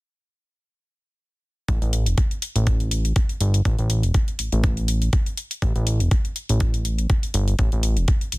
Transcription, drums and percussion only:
1.68 kick, closed hi-hat
1.82 closed hi-hat
1.93 closed hi-hat
2.06 closed hi-hat
2.18 kick, closed hi-hat
2.31 closed hi-hat
2.42 closed hi-hat
2.56 closed hi-hat
2.67 kick, closed hi-hat
2.80 closed hi-hat
2.91 closed hi-hat
3.05 closed hi-hat
3.16 kick, closed hi-hat
3.29 closed hi-hat
3.41 closed hi-hat
3.54 closed hi-hat
3.65 kick, closed hi-hat
3.79 closed hi-hat
3.90 closed hi-hat
4.03 closed hi-hat
4.14 kick, closed hi-hat
4.28 closed hi-hat
4.39 closed hi-hat
4.52 closed hi-hat
4.64 kick, closed hi-hat
4.77 closed hi-hat
4.88 closed hi-hat
5.02 closed hi-hat
5.13 kick, closed hi-hat
5.26 closed hi-hat
5.37 closed hi-hat
5.51 closed hi-hat
5.62 kick, closed hi-hat
5.76 closed hi-hat
5.87 closed hi-hat
6.00 closed hi-hat
6.11 kick, closed hi-hat
6.25 closed hi-hat
6.36 closed hi-hat
6.49 closed hi-hat
6.60 kick, closed hi-hat
6.74 closed hi-hat
6.85 closed hi-hat
6.98 closed hi-hat
7.10 kick, closed hi-hat
7.23 closed hi-hat
7.34 closed hi-hat
7.48 closed hi-hat
7.59 kick, closed hi-hat
7.72 closed hi-hat
7.83 closed hi-hat
7.97 closed hi-hat
8.08 kick, closed hi-hat
8.21 closed hi-hat
8.32 closed hi-hat

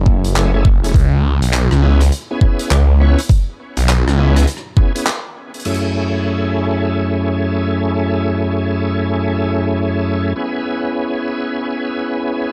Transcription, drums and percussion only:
0.06 kick
0.24 closed hi-hat
0.35 clap, closed hi-hat
0.65 kick
0.84 closed hi-hat
0.94 kick, closed hi-hat
1.42 closed hi-hat
1.53 clap, closed hi-hat
1.71 cross-stick
2.00 cross-stick, closed hi-hat
2.12 closed hi-hat
2.41 kick
2.59 closed hi-hat
2.70 clap, closed hi-hat
3.19 closed hi-hat
3.29 kick, closed hi-hat
3.77 closed hi-hat
3.89 clap, closed hi-hat
4.08 cross-stick
4.36 cross-stick, closed hi-hat
4.42 cross-stick
4.47 cross-stick, closed hi-hat
4.57 cross-stick
4.77 kick
4.96 closed hi-hat
5.06 clap, closed hi-hat
5.54 closed hi-hat
5.60 closed hi-hat
5.65 closed hi-hat, crash
5.74 closed hi-hat

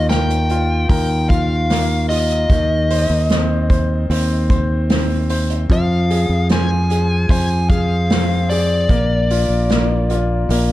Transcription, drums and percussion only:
0.09 snare, hi-hat pedal, open hi-hat
0.30 hi-hat pedal
0.49 hi-hat pedal, open hi-hat
0.90 kick, hi-hat pedal, open hi-hat
1.30 kick, hi-hat pedal, open hi-hat
1.70 snare, hi-hat pedal, open hi-hat
1.90 open hi-hat
2.10 hi-hat pedal, open hi-hat
2.30 hi-hat pedal
2.50 kick, hi-hat pedal, open hi-hat
2.90 hi-hat pedal, open hi-hat
3.29 snare, hi-hat pedal, open hi-hat
3.69 kick, hi-hat pedal, open hi-hat
4.10 hi-hat pedal, open hi-hat
4.50 kick, hi-hat pedal, open hi-hat
4.89 snare, hi-hat pedal, open hi-hat
5.10 open hi-hat
5.29 hi-hat pedal, open hi-hat
5.49 hi-hat pedal
5.70 kick, hi-hat pedal, open hi-hat
6.10 hi-hat pedal, open hi-hat
6.49 snare, hi-hat pedal, open hi-hat
6.90 hi-hat pedal, open hi-hat
7.29 kick, hi-hat pedal, open hi-hat
7.70 kick, hi-hat pedal, open hi-hat
8.10 snare, hi-hat pedal, open hi-hat
8.50 hi-hat pedal, open hi-hat
8.89 kick, hi-hat pedal, open hi-hat
9.30 hi-hat pedal, open hi-hat
9.69 snare, hi-hat pedal, open hi-hat
10.10 hi-hat pedal, open hi-hat
10.50 hi-hat pedal, open hi-hat

